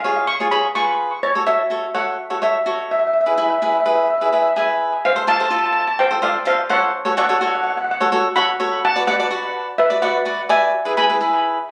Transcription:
0.00 C#5 F5
0.05 F4 G#4 F5
0.16 F5
0.27 C#6
0.40 F4 G#4 C#5
0.51 F4 G#4 C#5 B5
0.75 F4 G#4 B4 C#6
1.23 C#5
1.35 F#4 A4 C#5
1.46 F#4 A4 C#5 E5
1.70 F#4 A4 C#5
1.94 F#4 A4 C#5 F#5
2.30 F#4 A4 C#5
2.42 F#4 A4 C#5 E5
2.66 F#4 A4 C#5
2.91 E5
2.99 E5
3.07 E5
3.13 E5
3.21 E5
3.26 E4 G#4 B4 E5
3.36 E4 G#4 B4 E5
3.43 E5
3.50 E5
3.58 E5
3.62 E4 G#4 B4 E5
3.73 E5
3.80 E5
3.86 E4 G#4 B4 E5
3.95 E5
4.03 E5
4.10 E5
4.18 B4 E5
4.22 E4 G#4 E5
4.33 E4 G#4 B4 E5
4.42 E5
4.56 E4 G#4 B4 E5 G#5
5.05 C5 F5
5.16 F4 A4 C5
5.27 F4 A4 C5 F5 A5
5.36 A4 C5 A5
5.40 F4 A5
5.50 F4 A4 C5 A5
5.58 A5
5.65 A5
5.73 A5
5.80 A5
5.87 A5
5.99 C5 G5
6.11 F4 A4 C5
6.22 F4 A4 C5 D5 F5
6.45 F4 A4 C5 F5
6.69 F4 A4 C5 C#5 F#5
7.05 F#4 A4 C#5
7.17 F#4 A4 C#5 D5 F#5
7.25 C#5 F#5
7.29 F#4 A4
7.33 F#5
7.41 F#4 A4 C#5 F#5
7.48 F#5
7.55 F#5
7.63 F#5
7.70 F#5
7.77 F#5
7.84 F#5
7.91 F#5
8.00 F#4 A4 C#5 F#5
8.12 F#4 A4 C#5
8.36 F#4 A4 C#5 F#5 B5
8.60 F#4 A4 C#5
8.85 F#5 A5
8.96 F#4 B4 D5
9.07 F#4 B4 D5 F#5
9.20 F#4 B4 D5
9.31 F#4 B4 D5
9.78 B4 E5
9.90 F#4 B4 D5
10.02 F#4 B4 D5 F#5
10.25 F#4 B4 D5
10.49 F#4 B4 D5 E5 G#5
10.85 E4 G#4 B4
10.97 E4 G#4 B4 G#5 B5
11.09 E4 G#4 B4
11.21 E4 G#4 B4

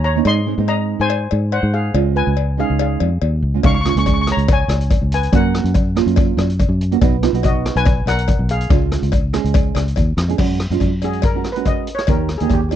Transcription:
Already playing: D#2
0.04 C#5 A#5
0.16 A#3 C#4 D#4
0.25 G#2 G#3 C4 D#4 D#5 C6, cowbell
0.46 G#3 C4 D#4
0.58 G#2 G#3 C4 D#4
0.68 D#5 A#5, cowbell
1.00 G#2 C5 G#5
1.10 cowbell
1.31 G#2, cowbell
1.52 C5 F#5, cowbell
1.63 G#2
1.74 G#4 F5
1.94 C#2 G#3 C#4 F4, cowbell
2.16 B4 G#5
2.27 C#2
2.37 cowbell
2.57 G#3 C#4 D#4 G#4 F5
2.70 C#2
2.79 G#4 F5, cowbell
3.00 F2, cowbell
3.22 D#2, cowbell
3.42 C#2
3.54 G#3 C#4 F4
3.63 C#2 G#3 C#4 D#4 F5 C#6, kick, closed hi-hat, cowbell
3.75 C#6
3.81 G#3 C#6
3.85 C#4 F4, cross-stick, closed hi-hat
3.89 C#6
3.95 C#2 G#3 C#4 G#4 C#6, closed hi-hat
4.06 C#6, kick, closed hi-hat, cowbell
4.14 C#6
4.21 C#6
4.27 cross-stick, closed hi-hat
4.31 C#5 A#5
4.37 C#2, closed hi-hat
4.48 C#5, kick, closed hi-hat, cowbell
4.53 G#5
4.68 C#2, cross-stick, closed hi-hat, cowbell
4.81 closed hi-hat
4.91 kick, closed hi-hat, cowbell
5.02 C#2
5.12 B4 G#5, closed hi-hat
5.23 closed hi-hat
5.32 F#2 A#3 C#4 F#4 A#4 F#5, kick, closed hi-hat, cowbell
5.54 cross-stick, closed hi-hat
5.64 F#2, closed hi-hat
5.74 kick, closed hi-hat, cowbell
5.95 A#3 C#4 F4, cross-stick, closed hi-hat
6.06 F#2, closed hi-hat
6.16 kick, closed hi-hat, cowbell
6.37 F#2, cross-stick, closed hi-hat, cowbell
6.50 closed hi-hat
6.60 kick, closed hi-hat, cowbell
6.69 F#2
6.81 closed hi-hat
6.91 A#3 C#4 F#4, closed hi-hat
7.01 B1 B3 D#4 F#4, kick, closed hi-hat, cowbell
7.23 B3 D#4 F4, cross-stick, closed hi-hat
7.33 B1 B3 D#4 F#4, closed hi-hat
7.43 F#4 D#5, kick, closed hi-hat, cowbell
7.66 cross-stick, closed hi-hat
7.76 B1 B4 G#5, closed hi-hat
7.86 kick, closed hi-hat, cowbell
8.06 B1 A#4 F#5, cross-stick, closed hi-hat, cowbell
8.19 closed hi-hat
8.28 kick, closed hi-hat, cowbell
8.39 B1
8.49 G#4 F5, closed hi-hat
8.61 closed hi-hat
8.69 C#2 G#3 C#4 F4, kick, closed hi-hat, cowbell
8.92 cross-stick, closed hi-hat
9.02 C#2, closed hi-hat
9.12 kick, closed hi-hat, cowbell
9.33 G#3 C#4 G#4, cross-stick, closed hi-hat
9.44 C#2, closed hi-hat
9.54 kick, closed hi-hat, cowbell
9.75 C#2, cross-stick, closed hi-hat, cowbell
9.88 closed hi-hat
9.96 D#2, kick, closed hi-hat, cowbell
10.17 F2, cross-stick, closed hi-hat
10.28 G#3 C#4 G#4, closed hi-hat
10.38 F#2 G#3 C#4 F#4, kick, crash, cowbell
10.60 cross-stick, closed hi-hat
10.70 F#2 G#3 C#4 F4, closed hi-hat
10.80 F#2, kick, closed hi-hat, cowbell
11.02 G#3 C#4 F#4 G#4, closed hi-hat, cowbell
11.13 closed hi-hat
11.22 A#4, kick, closed hi-hat, cowbell
11.35 G#3 C#4 F#4
11.44 cross-stick, closed hi-hat
11.52 G#3 B4, closed hi-hat
11.57 C#4 F#4
11.65 D#5, kick, closed hi-hat, cowbell
11.87 closed hi-hat
11.95 C#5, cross-stick, closed hi-hat
12.07 D#2 A#3 D#4 G4 A#4, kick, closed hi-hat, cowbell
12.29 cross-stick, closed hi-hat
12.38 D#2 A#3 D#4 G#4, closed hi-hat
12.42 G4
12.50 D#2 G4, kick, closed hi-hat, cowbell
12.61 G4
12.69 A#3 D#4 F4 G4, closed hi-hat, cowbell

